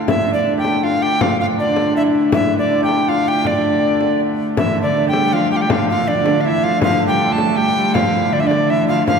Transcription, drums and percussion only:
0, 0, Header, 1, 2, 480
1, 0, Start_track
1, 0, Key_signature, -1, "minor"
1, 0, Tempo, 374813
1, 104, Time_signature, 3, 2, 24, 8
1, 11774, End_track
2, 0, Start_track
2, 0, Title_t, "Frame drum"
2, 102, Note_on_c, 9, 64, 75
2, 230, Note_off_c, 9, 64, 0
2, 588, Note_on_c, 9, 64, 24
2, 716, Note_off_c, 9, 64, 0
2, 827, Note_on_c, 9, 64, 59
2, 955, Note_off_c, 9, 64, 0
2, 1070, Note_on_c, 9, 64, 27
2, 1198, Note_off_c, 9, 64, 0
2, 1548, Note_on_c, 9, 64, 84
2, 1676, Note_off_c, 9, 64, 0
2, 2021, Note_on_c, 9, 64, 29
2, 2149, Note_off_c, 9, 64, 0
2, 2260, Note_on_c, 9, 64, 67
2, 2388, Note_off_c, 9, 64, 0
2, 2497, Note_on_c, 9, 64, 26
2, 2625, Note_off_c, 9, 64, 0
2, 2976, Note_on_c, 9, 64, 86
2, 3104, Note_off_c, 9, 64, 0
2, 3461, Note_on_c, 9, 64, 24
2, 3589, Note_off_c, 9, 64, 0
2, 3697, Note_on_c, 9, 64, 58
2, 3825, Note_off_c, 9, 64, 0
2, 3939, Note_on_c, 9, 64, 25
2, 4067, Note_off_c, 9, 64, 0
2, 4414, Note_on_c, 9, 64, 64
2, 4542, Note_off_c, 9, 64, 0
2, 5133, Note_on_c, 9, 64, 54
2, 5261, Note_off_c, 9, 64, 0
2, 5379, Note_on_c, 9, 64, 23
2, 5507, Note_off_c, 9, 64, 0
2, 5856, Note_on_c, 9, 64, 84
2, 5984, Note_off_c, 9, 64, 0
2, 6342, Note_on_c, 9, 64, 28
2, 6470, Note_off_c, 9, 64, 0
2, 6576, Note_on_c, 9, 64, 68
2, 6704, Note_off_c, 9, 64, 0
2, 6818, Note_on_c, 9, 64, 29
2, 6946, Note_off_c, 9, 64, 0
2, 7296, Note_on_c, 9, 64, 90
2, 7425, Note_off_c, 9, 64, 0
2, 7776, Note_on_c, 9, 64, 27
2, 7904, Note_off_c, 9, 64, 0
2, 8014, Note_on_c, 9, 64, 70
2, 8142, Note_off_c, 9, 64, 0
2, 8252, Note_on_c, 9, 64, 30
2, 8380, Note_off_c, 9, 64, 0
2, 8728, Note_on_c, 9, 64, 80
2, 8856, Note_off_c, 9, 64, 0
2, 9212, Note_on_c, 9, 64, 26
2, 9340, Note_off_c, 9, 64, 0
2, 9454, Note_on_c, 9, 64, 66
2, 9583, Note_off_c, 9, 64, 0
2, 9699, Note_on_c, 9, 64, 29
2, 9827, Note_off_c, 9, 64, 0
2, 10180, Note_on_c, 9, 64, 85
2, 10309, Note_off_c, 9, 64, 0
2, 10661, Note_on_c, 9, 64, 27
2, 10789, Note_off_c, 9, 64, 0
2, 10901, Note_on_c, 9, 64, 59
2, 11029, Note_off_c, 9, 64, 0
2, 11141, Note_on_c, 9, 64, 24
2, 11269, Note_off_c, 9, 64, 0
2, 11622, Note_on_c, 9, 64, 70
2, 11750, Note_off_c, 9, 64, 0
2, 11774, End_track
0, 0, End_of_file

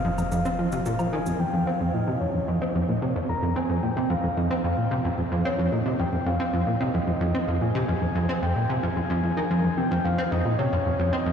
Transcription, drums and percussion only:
0, 0, Header, 1, 2, 480
1, 0, Start_track
1, 0, Key_signature, -4, "minor"
1, 0, Tempo, 540541
1, 1240, Time_signature, 4, 2, 24, 8
1, 10057, End_track
2, 0, Start_track
2, 0, Title_t, "Drums"
2, 162, Note_on_c, 9, 77, 55
2, 162, Note_on_c, 9, 82, 49
2, 251, Note_off_c, 9, 77, 0
2, 251, Note_off_c, 9, 82, 0
2, 281, Note_on_c, 9, 82, 59
2, 370, Note_off_c, 9, 82, 0
2, 401, Note_on_c, 9, 82, 33
2, 490, Note_off_c, 9, 82, 0
2, 639, Note_on_c, 9, 82, 48
2, 728, Note_off_c, 9, 82, 0
2, 760, Note_on_c, 9, 82, 60
2, 849, Note_off_c, 9, 82, 0
2, 880, Note_on_c, 9, 77, 69
2, 880, Note_on_c, 9, 82, 34
2, 969, Note_off_c, 9, 77, 0
2, 969, Note_off_c, 9, 82, 0
2, 1120, Note_on_c, 9, 82, 51
2, 1209, Note_off_c, 9, 82, 0
2, 10057, End_track
0, 0, End_of_file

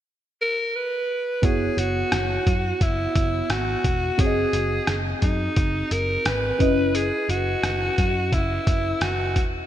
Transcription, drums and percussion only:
0, 0, Header, 1, 2, 480
1, 0, Start_track
1, 0, Tempo, 689655
1, 995, Time_signature, 4, 2, 24, 8
1, 6727, End_track
2, 0, Start_track
2, 0, Title_t, "Drums"
2, 996, Note_on_c, 9, 36, 113
2, 996, Note_on_c, 9, 42, 87
2, 1065, Note_off_c, 9, 42, 0
2, 1066, Note_off_c, 9, 36, 0
2, 1239, Note_on_c, 9, 42, 62
2, 1309, Note_off_c, 9, 42, 0
2, 1476, Note_on_c, 9, 37, 91
2, 1476, Note_on_c, 9, 42, 82
2, 1545, Note_off_c, 9, 37, 0
2, 1546, Note_off_c, 9, 42, 0
2, 1717, Note_on_c, 9, 36, 76
2, 1718, Note_on_c, 9, 42, 64
2, 1787, Note_off_c, 9, 36, 0
2, 1787, Note_off_c, 9, 42, 0
2, 1956, Note_on_c, 9, 36, 87
2, 1956, Note_on_c, 9, 42, 70
2, 2025, Note_off_c, 9, 36, 0
2, 2025, Note_off_c, 9, 42, 0
2, 2196, Note_on_c, 9, 36, 85
2, 2196, Note_on_c, 9, 42, 70
2, 2265, Note_off_c, 9, 42, 0
2, 2266, Note_off_c, 9, 36, 0
2, 2434, Note_on_c, 9, 42, 82
2, 2437, Note_on_c, 9, 37, 98
2, 2504, Note_off_c, 9, 42, 0
2, 2507, Note_off_c, 9, 37, 0
2, 2676, Note_on_c, 9, 36, 88
2, 2676, Note_on_c, 9, 42, 72
2, 2745, Note_off_c, 9, 36, 0
2, 2745, Note_off_c, 9, 42, 0
2, 2915, Note_on_c, 9, 42, 87
2, 2916, Note_on_c, 9, 36, 112
2, 2984, Note_off_c, 9, 42, 0
2, 2985, Note_off_c, 9, 36, 0
2, 3155, Note_on_c, 9, 42, 63
2, 3225, Note_off_c, 9, 42, 0
2, 3392, Note_on_c, 9, 37, 99
2, 3393, Note_on_c, 9, 42, 81
2, 3462, Note_off_c, 9, 37, 0
2, 3462, Note_off_c, 9, 42, 0
2, 3633, Note_on_c, 9, 42, 65
2, 3636, Note_on_c, 9, 36, 79
2, 3703, Note_off_c, 9, 42, 0
2, 3706, Note_off_c, 9, 36, 0
2, 3872, Note_on_c, 9, 42, 72
2, 3875, Note_on_c, 9, 36, 86
2, 3942, Note_off_c, 9, 42, 0
2, 3944, Note_off_c, 9, 36, 0
2, 4115, Note_on_c, 9, 42, 70
2, 4185, Note_off_c, 9, 42, 0
2, 4353, Note_on_c, 9, 42, 82
2, 4356, Note_on_c, 9, 37, 96
2, 4423, Note_off_c, 9, 42, 0
2, 4426, Note_off_c, 9, 37, 0
2, 4595, Note_on_c, 9, 36, 100
2, 4595, Note_on_c, 9, 42, 76
2, 4665, Note_off_c, 9, 36, 0
2, 4665, Note_off_c, 9, 42, 0
2, 4836, Note_on_c, 9, 42, 85
2, 4905, Note_off_c, 9, 42, 0
2, 5077, Note_on_c, 9, 42, 61
2, 5147, Note_off_c, 9, 42, 0
2, 5314, Note_on_c, 9, 37, 92
2, 5315, Note_on_c, 9, 42, 85
2, 5384, Note_off_c, 9, 37, 0
2, 5384, Note_off_c, 9, 42, 0
2, 5554, Note_on_c, 9, 42, 63
2, 5556, Note_on_c, 9, 36, 78
2, 5624, Note_off_c, 9, 42, 0
2, 5625, Note_off_c, 9, 36, 0
2, 5794, Note_on_c, 9, 36, 91
2, 5795, Note_on_c, 9, 42, 70
2, 5864, Note_off_c, 9, 36, 0
2, 5864, Note_off_c, 9, 42, 0
2, 6035, Note_on_c, 9, 36, 87
2, 6035, Note_on_c, 9, 42, 73
2, 6104, Note_off_c, 9, 36, 0
2, 6104, Note_off_c, 9, 42, 0
2, 6272, Note_on_c, 9, 42, 83
2, 6275, Note_on_c, 9, 37, 100
2, 6342, Note_off_c, 9, 42, 0
2, 6345, Note_off_c, 9, 37, 0
2, 6514, Note_on_c, 9, 42, 71
2, 6515, Note_on_c, 9, 36, 84
2, 6584, Note_off_c, 9, 36, 0
2, 6584, Note_off_c, 9, 42, 0
2, 6727, End_track
0, 0, End_of_file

